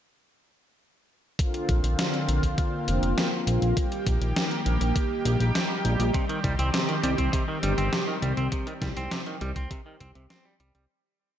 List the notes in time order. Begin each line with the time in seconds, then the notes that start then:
1.39 D3 A#3 C4 F4, kick, closed hi-hat
1.54 closed hi-hat
1.69 A#1, kick, closed hi-hat
1.84 A#1, closed hi-hat
1.99 snare, closed hi-hat
2.14 closed hi-hat
2.28 A#1, closed hi-hat
2.43 A#1, kick, closed hi-hat
2.58 kick, closed hi-hat
2.88 F1, closed hi-hat
3.03 F1, closed hi-hat
3.18 snare, closed hi-hat
3.47 A#1, closed hi-hat
3.62 A#1, closed hi-hat
3.77 D#3 G3 G4, kick, closed hi-hat
3.92 closed hi-hat
4.06 A#1, kick, closed hi-hat
4.21 A#1, closed hi-hat
4.36 snare, closed hi-hat
4.51 closed hi-hat
4.66 A#1, closed hi-hat
4.81 A#1, closed hi-hat
4.96 kick, closed hi-hat
5.25 A#1, closed hi-hat
5.40 A#1, closed hi-hat
5.55 snare, closed hi-hat
5.85 A#1, closed hi-hat
6.00 A#1, closed hi-hat
6.14 C3 C4, kick, closed hi-hat
6.29 D#3, closed hi-hat
6.44 C2 G3, kick, closed hi-hat
6.59 C2 C4, closed hi-hat
6.74 C3, snare, closed hi-hat
6.89 D#3, closed hi-hat
7.04 C2 G3, closed hi-hat
7.18 C2 C4, kick, closed hi-hat
7.33 C3, kick, closed hi-hat
7.48 D#3
7.63 G1 G3, closed hi-hat
7.78 G1 C4, closed hi-hat
7.93 C3, snare, closed hi-hat
8.08 D#3
8.22 C2 G3, closed hi-hat
8.37 C2 C4, closed hi-hat
8.52 C3, kick, closed hi-hat
8.67 D#3, closed hi-hat
8.82 C2 G3, kick, snare, closed hi-hat
8.97 C2 C4, closed hi-hat
9.11 C3, snare, closed hi-hat
9.26 D#3, closed hi-hat
9.41 C2 G3, closed hi-hat
9.56 C2 C4, kick, closed hi-hat
9.71 C3, kick, closed hi-hat
9.86 D#3
10.00 C2 C4, kick, closed hi-hat
10.15 C2 C3, closed hi-hat
10.30 C4, snare, closed hi-hat
10.45 G3
10.60 C2 G3, closed hi-hat
10.75 C2 G3, closed hi-hat